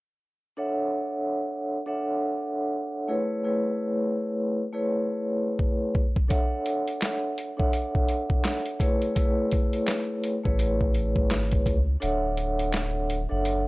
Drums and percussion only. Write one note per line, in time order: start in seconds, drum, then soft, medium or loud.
5.59 kick medium
5.95 kick medium
6.16 kick medium
6.30 kick loud
6.30 closed hi-hat medium
6.66 closed hi-hat medium
6.88 closed hi-hat soft
7.02 snare loud
7.02 clap medium
7.02 closed hi-hat loud
7.38 closed hi-hat medium
7.60 kick medium
7.73 closed hi-hat medium
7.95 kick medium
8.09 closed hi-hat medium
8.30 kick medium
8.45 snare loud
8.45 clap loud
8.45 closed hi-hat medium
8.66 closed hi-hat medium
8.80 kick loud
8.80 closed hi-hat medium
9.02 closed hi-hat medium
9.16 kick loud
9.16 closed hi-hat medium
9.52 kick loud
9.52 closed hi-hat medium
9.73 closed hi-hat medium
9.88 snare loud
9.88 clap medium
9.88 closed hi-hat loud
10.24 closed hi-hat medium
10.45 kick medium
10.59 closed hi-hat loud
10.81 kick medium
10.94 closed hi-hat medium
11.16 kick medium
11.31 snare loud
11.31 clap medium
11.31 closed hi-hat loud
11.51 kick medium
11.51 closed hi-hat medium
11.66 kick loud
11.66 closed hi-hat medium
12.02 closed hi-hat medium
12.37 closed hi-hat medium
12.59 closed hi-hat medium
12.74 snare loud
12.74 clap medium
12.74 closed hi-hat loud
13.10 closed hi-hat medium
13.45 closed hi-hat medium